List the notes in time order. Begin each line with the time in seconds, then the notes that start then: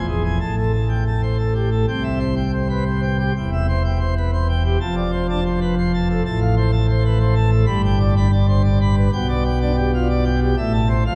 Already playing: E1 E2
0.09 G#4
0.24 G#5
0.40 A1 A2 A5
0.57 A4
0.72 A5
0.89 G5
1.06 A5
1.23 C5
1.38 A4
1.54 G4
1.71 A4
1.88 C2 C3 G5
2.03 E5
2.19 C5
2.36 G5
2.53 C5
2.69 B4
2.85 C5
3.02 G5
3.19 G4
3.36 E1 E2 G5
3.52 E5
3.69 C5
3.85 G5
4.00 C5
4.17 B4
4.33 C5
4.49 G5
4.65 G4
4.80 F1 F2 A5
4.96 D5
5.12 C5
5.29 D4 A5
5.45 C5
5.61 B4
5.78 C5
5.94 A5
6.09 A4
6.25 A1 A2 A5
6.41 F5
6.57 C5
6.71 A5
6.89 C5
7.05 B4
7.20 C5
7.36 A5
7.51 A4
7.66 G1 G2 B5
7.85 G5
7.99 D5
8.16 D4 B5
8.32 D5
8.49 C5
8.64 D5
8.81 B5
8.96 B4
9.13 B1 B2 G5
9.29 D5
9.44 G5
9.61 D4 D5
9.76 G4
9.94 F4
10.10 D5
10.25 G5
10.41 G4
10.57 A1 A2 E5
10.73 A5
10.89 C5
11.06 F1 F2 F5